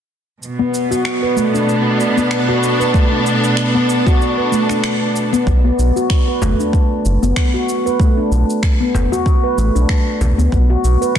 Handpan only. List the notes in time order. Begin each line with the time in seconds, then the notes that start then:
0.59 B3
0.91 F#4
1.23 B4
1.36 A3
1.54 D4
2.17 B3
2.48 F#4
2.80 B4
2.94 A3
3.12 D4
3.75 B3
4.06 F#4
4.38 B4
4.52 A3
4.70 D4
5.33 B3
5.64 B3
5.96 F#4
6.28 B4
6.42 A3
6.59 D4
7.23 B3
7.54 F#4
7.86 B4
8.00 A3
8.17 D4
8.80 B3
9.12 F#4
9.43 B4
9.57 A3
9.75 D4
10.38 B3
10.70 F#4
11.01 B4
11.15 G#3